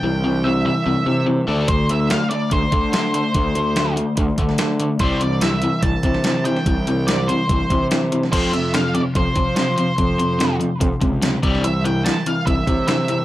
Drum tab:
CC |----------------|----------------|----------------|----------------|
HH |----------------|x-x-x-x-x-x-x-x-|x-x-x-x-x-x-x-x-|x-x-x-x-x-x-x-x-|
SD |----------------|----o-------o---|----o------oo---|----o------oo--o|
BD |----------------|o-------o-o-----|o-------o-o-----|o-------o-o-----|

CC |----------------|x---------------|----------------|----------------|
HH |x-x-x-x-x-x-x-x-|x-x-x-x-x-x-x-x-|x-x-x-x-x-x-x-x-|x-x-x-x-x-x-x-x-|
SD |----o-------o--o|----o-------o---|----o-------o--o|----o-------o---|
BD |o-------o-o-----|o-------o-o-----|o-------o-o---o-|--------o-o-----|